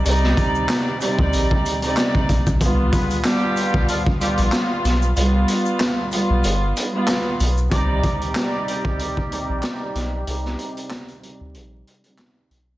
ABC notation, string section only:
X:1
M:4/4
L:1/16
Q:"Swing 16ths" 1/4=94
K:Cm
V:1 name="String section"
[C,G,Ed]6 [C,G,Ed]4- [C,G,Ed] [C,G,Ed]4 z | [G,=B,F]4 [G,B,F]6 [G,B,F]6 | [G,=B,F]6 [G,B,F]4- [G,B,F] [G,B,F]4 z | [C,G,Ed]4 [C,G,Ed]6 [C,G,Ed]6 |
[C,G,Ed]6 [C,G,Ed]4- [C,G,Ed] [C,G,Ed]4 z |]